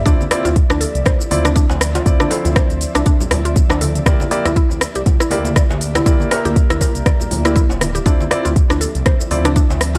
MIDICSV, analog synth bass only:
0, 0, Header, 1, 2, 480
1, 0, Start_track
1, 0, Key_signature, -1, "minor"
1, 0, Tempo, 500000
1, 59, Time_signature, 4, 2, 24, 8
1, 9582, End_track
2, 0, Start_track
2, 0, Title_t, "Analog synth bass"
2, 0, Program_c, 0, 38
2, 59, Note_on_c, 0, 38, 104
2, 148, Note_off_c, 0, 38, 0
2, 434, Note_on_c, 0, 38, 82
2, 580, Note_off_c, 0, 38, 0
2, 674, Note_on_c, 0, 38, 85
2, 820, Note_off_c, 0, 38, 0
2, 913, Note_on_c, 0, 36, 95
2, 982, Note_off_c, 0, 36, 0
2, 1258, Note_on_c, 0, 38, 92
2, 1558, Note_off_c, 0, 38, 0
2, 1637, Note_on_c, 0, 38, 93
2, 1922, Note_off_c, 0, 38, 0
2, 1978, Note_on_c, 0, 38, 102
2, 2067, Note_off_c, 0, 38, 0
2, 2355, Note_on_c, 0, 38, 82
2, 2500, Note_off_c, 0, 38, 0
2, 2596, Note_on_c, 0, 38, 84
2, 2741, Note_off_c, 0, 38, 0
2, 2837, Note_on_c, 0, 36, 95
2, 2904, Note_off_c, 0, 36, 0
2, 3181, Note_on_c, 0, 38, 93
2, 3480, Note_off_c, 0, 38, 0
2, 3556, Note_on_c, 0, 38, 93
2, 3841, Note_off_c, 0, 38, 0
2, 3897, Note_on_c, 0, 38, 103
2, 3987, Note_off_c, 0, 38, 0
2, 4275, Note_on_c, 0, 38, 82
2, 4420, Note_off_c, 0, 38, 0
2, 4516, Note_on_c, 0, 38, 85
2, 4660, Note_off_c, 0, 38, 0
2, 4758, Note_on_c, 0, 36, 90
2, 4824, Note_off_c, 0, 36, 0
2, 5099, Note_on_c, 0, 38, 96
2, 5399, Note_off_c, 0, 38, 0
2, 5475, Note_on_c, 0, 38, 93
2, 5761, Note_off_c, 0, 38, 0
2, 5820, Note_on_c, 0, 38, 104
2, 5908, Note_off_c, 0, 38, 0
2, 6196, Note_on_c, 0, 38, 82
2, 6341, Note_off_c, 0, 38, 0
2, 6437, Note_on_c, 0, 38, 80
2, 6581, Note_off_c, 0, 38, 0
2, 6673, Note_on_c, 0, 36, 90
2, 6742, Note_off_c, 0, 36, 0
2, 7018, Note_on_c, 0, 38, 96
2, 7319, Note_off_c, 0, 38, 0
2, 7397, Note_on_c, 0, 26, 85
2, 7682, Note_off_c, 0, 26, 0
2, 7736, Note_on_c, 0, 38, 101
2, 7826, Note_off_c, 0, 38, 0
2, 8116, Note_on_c, 0, 38, 84
2, 8261, Note_off_c, 0, 38, 0
2, 8355, Note_on_c, 0, 38, 84
2, 8500, Note_off_c, 0, 38, 0
2, 8595, Note_on_c, 0, 36, 93
2, 8662, Note_off_c, 0, 36, 0
2, 8939, Note_on_c, 0, 38, 94
2, 9239, Note_off_c, 0, 38, 0
2, 9317, Note_on_c, 0, 38, 94
2, 9582, Note_off_c, 0, 38, 0
2, 9582, End_track
0, 0, End_of_file